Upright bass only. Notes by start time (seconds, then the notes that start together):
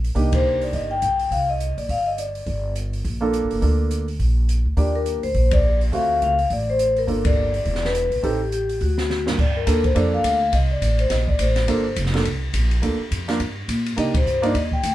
Already playing: A#1
0.15 C2
0.73 G1
1.02 B1
1.31 C2
1.77 A#1
1.89 G1
2.46 G1
3.05 A#1
3.43 G1
3.53 F#1
3.62 D2
4.19 A#1
4.66 D2
4.77 D#2
5.24 D2
5.35 A#1
5.93 D2
6.22 C#2
6.50 A1
7.08 G1
7.65 E1
8.10 A#1
8.23 A1
8.81 D2
9.38 G2
9.67 D#2
9.96 F2
10.24 D2
10.53 C2
10.81 A1
11.10 A#1
11.39 A1
11.68 G1
11.97 F1
12.25 C2
12.54 A#1
12.83 D2
12.99 muted upright bass stroke
13.11 F2
13.40 G2
13.68 A#2
13.98 C3
14.26 G2
14.54 D#2
14.83 D2